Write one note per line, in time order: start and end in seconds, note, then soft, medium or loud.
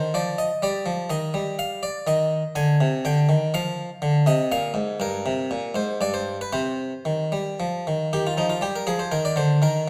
0.00 0.11 D#3 medium
0.00 0.13 C5 medium
0.14 0.49 F3 soft
0.14 0.38 D5 medium
0.38 0.62 D#5 medium
0.62 0.85 G3 medium
0.62 1.03 D5 medium
0.86 1.08 F3 medium
1.10 1.32 D#3 medium
1.10 1.58 D#5 medium
1.34 1.87 G3 medium
1.59 1.83 F5 medium
1.83 2.07 D5 medium
2.07 2.42 D#3 medium
2.07 2.56 D#5 medium
2.55 2.79 D3 medium
2.55 3.05 G#5 loud
2.81 3.04 C3 medium
3.05 3.28 D3 medium
3.05 3.46 G5 medium
3.29 3.52 D#3 medium
3.54 3.88 F3 medium
3.54 4.26 F5 loud
4.02 4.25 D3 medium
4.26 4.49 C3 medium
4.26 4.50 D#5 medium
4.52 4.74 A#2 medium
4.52 4.75 F5 medium
4.74 4.98 G#2 medium
5.00 5.23 G2 medium
5.00 5.64 A#4 loud
5.26 5.49 C3 medium
5.51 5.74 A#2 medium
5.75 5.99 G#2 medium
5.75 5.97 C5 medium
6.01 6.38 G2 medium
6.01 6.13 D5 medium
6.14 6.36 C5 medium
6.41 6.53 B4 medium
6.53 6.91 C3 medium
6.53 7.66 C5 medium
7.05 7.31 D#3 medium
7.32 7.58 G3 medium
7.60 7.85 F3 medium
7.87 8.11 D#3 soft
8.13 8.37 D#3 medium
8.13 8.25 G4 medium
8.27 8.38 F4 medium
8.38 8.62 F3 medium
8.38 8.50 D#4 medium
8.50 8.63 F4 medium
8.61 8.86 G3 medium
8.61 8.75 G4 medium
8.76 8.88 A#4 medium
8.87 9.11 F3 medium
8.87 9.00 G#4 medium
8.99 9.12 C5 medium
9.12 9.36 D#3 medium
9.12 9.25 A#4 medium
9.25 9.38 D5 medium
9.36 9.61 D3 medium
9.36 9.63 C5 medium
9.62 9.86 D#3 medium
9.62 9.89 A#4 medium